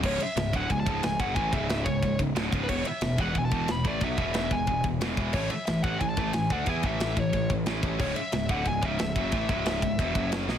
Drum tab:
CC |x-------|--------|x-------|--------|
RD |-xxxxxxx|xxxxxxxx|-xxxxxxx|xxxxxxxx|
SD |--o---o-|--o---o-|--o---o-|--o---o-|
BD |o--ooo-o|oo-ooo-o|o--ooo-o|oo-ooo-o|

CC |x-------|--------|x-------|--------|
RD |-xxxxxxx|xxxxxxxx|-xxxxxxx|xxxxxxx-|
SD |--o---o-|--o---o-|--o---o-|--o---oo|
BD |o--ooo-o|oo-ooo-o|o--ooo-o|oo-ooo--|